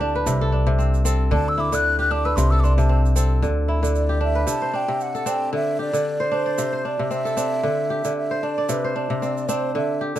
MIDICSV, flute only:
0, 0, Header, 1, 2, 480
1, 0, Start_track
1, 0, Key_signature, 0, "major"
1, 0, Tempo, 526778
1, 242, Time_signature, 4, 2, 24, 8
1, 9289, End_track
2, 0, Start_track
2, 0, Title_t, "Flute"
2, 0, Program_c, 0, 73
2, 0, Note_on_c, 0, 81, 92
2, 449, Note_off_c, 0, 81, 0
2, 1220, Note_on_c, 0, 81, 92
2, 1353, Note_on_c, 0, 88, 96
2, 1366, Note_off_c, 0, 81, 0
2, 1459, Note_on_c, 0, 86, 94
2, 1473, Note_off_c, 0, 88, 0
2, 1591, Note_on_c, 0, 90, 105
2, 1605, Note_off_c, 0, 86, 0
2, 1817, Note_off_c, 0, 90, 0
2, 1822, Note_on_c, 0, 90, 88
2, 1928, Note_on_c, 0, 86, 94
2, 1942, Note_off_c, 0, 90, 0
2, 2052, Note_on_c, 0, 88, 84
2, 2065, Note_off_c, 0, 86, 0
2, 2151, Note_on_c, 0, 84, 94
2, 2165, Note_off_c, 0, 88, 0
2, 2283, Note_on_c, 0, 88, 96
2, 2297, Note_off_c, 0, 84, 0
2, 2368, Note_on_c, 0, 86, 67
2, 2382, Note_off_c, 0, 88, 0
2, 2403, Note_on_c, 0, 84, 84
2, 2417, Note_off_c, 0, 86, 0
2, 2525, Note_off_c, 0, 84, 0
2, 2530, Note_on_c, 0, 81, 73
2, 2753, Note_off_c, 0, 81, 0
2, 3604, Note_on_c, 0, 74, 80
2, 3823, Note_off_c, 0, 74, 0
2, 3853, Note_on_c, 0, 76, 98
2, 4068, Note_off_c, 0, 76, 0
2, 4089, Note_on_c, 0, 81, 104
2, 4333, Note_on_c, 0, 79, 92
2, 4347, Note_off_c, 0, 81, 0
2, 4575, Note_on_c, 0, 78, 85
2, 4588, Note_off_c, 0, 79, 0
2, 4813, Note_on_c, 0, 79, 94
2, 4827, Note_off_c, 0, 78, 0
2, 5044, Note_off_c, 0, 79, 0
2, 5052, Note_on_c, 0, 76, 98
2, 5267, Note_off_c, 0, 76, 0
2, 5294, Note_on_c, 0, 74, 93
2, 5777, Note_on_c, 0, 72, 94
2, 5791, Note_off_c, 0, 74, 0
2, 6249, Note_on_c, 0, 74, 81
2, 6262, Note_off_c, 0, 72, 0
2, 6486, Note_on_c, 0, 76, 93
2, 6499, Note_off_c, 0, 74, 0
2, 7444, Note_off_c, 0, 76, 0
2, 7449, Note_on_c, 0, 76, 90
2, 7686, Note_on_c, 0, 74, 84
2, 7700, Note_off_c, 0, 76, 0
2, 7925, Note_on_c, 0, 71, 83
2, 7939, Note_off_c, 0, 74, 0
2, 8163, Note_on_c, 0, 72, 73
2, 8177, Note_off_c, 0, 71, 0
2, 8405, Note_on_c, 0, 74, 81
2, 8419, Note_off_c, 0, 72, 0
2, 8647, Note_on_c, 0, 72, 87
2, 8661, Note_off_c, 0, 74, 0
2, 8886, Note_off_c, 0, 72, 0
2, 8894, Note_on_c, 0, 76, 85
2, 9113, Note_off_c, 0, 76, 0
2, 9289, End_track
0, 0, End_of_file